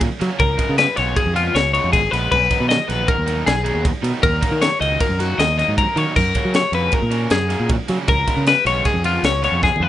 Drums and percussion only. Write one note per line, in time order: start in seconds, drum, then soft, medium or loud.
0.01 kick loud
0.01 ride loud
0.21 snare soft
0.21 ride medium
0.39 kick loud
0.39 ride loud
0.59 kick medium
0.59 ride medium
0.78 snare loud
0.78 ride loud
0.97 snare soft
0.97 ride medium
1.16 kick loud
1.16 ride loud
1.36 ride medium
1.55 snare loud
1.55 ride loud
1.74 ride medium
1.93 kick loud
1.93 snare soft
1.93 ride loud
2.13 snare soft
2.13 ride medium
2.32 kick loud
2.32 crash loud
2.51 kick medium
2.51 ride medium
2.70 snare loud
2.70 ride loud
2.90 snare soft
2.90 ride medium
3.08 kick loud
3.08 ride loud
3.28 ride medium
3.47 snare loud
3.47 ride loud
3.66 ride medium
3.85 kick loud
3.85 ride loud
4.04 ride medium
4.23 kick loud
4.23 ride loud
4.43 kick loud
4.43 ride medium
4.62 snare loud
4.62 ride loud
4.82 ride medium
5.00 kick loud
5.00 ride loud
5.20 snare soft
5.20 ride medium
5.39 snare loud
5.39 ride loud
5.59 snare soft
5.59 ride medium
5.78 kick loud
5.78 ride loud
5.97 ride medium
6.16 kick loud
6.16 crash loud
6.35 kick medium
6.35 ride medium
6.54 snare loud
6.54 ride loud
6.73 ride medium
6.92 kick loud
6.92 ride loud
7.11 ride medium
7.30 snare loud
7.30 ride loud
7.50 snare soft
7.50 ride medium
7.69 kick loud
7.69 ride loud
7.88 snare soft
7.88 ride medium
8.08 kick loud
8.08 ride loud
8.28 kick medium
8.28 ride medium
8.47 snare loud
8.47 ride loud
8.66 snare soft
8.66 ride medium
8.85 kick loud
8.85 snare soft
8.85 ride loud
9.04 ride medium
9.24 snare loud
9.24 ride loud
9.44 snare soft
9.44 ride medium
9.63 kick loud
9.63 snare medium
9.76 mid tom medium